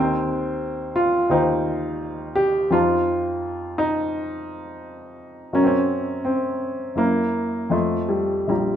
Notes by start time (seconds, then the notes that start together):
Already playing: D#2 C4 D#4 C5 G5
0.96 F4
1.30 D#2 D#4 C5 G5
2.35 G4
2.70 F2 D#4 F4 C5 A5
3.78 D#4
5.53 F#2 C#4 F#4 A#4 A#5
5.63 C4 C#4
6.25 C4
6.95 F#2 A#3 E4 A#4 A#5
7.70 F2 A3 F4 D#5 C6
8.09 G3
8.47 A#1 G3 F4 D5 A#5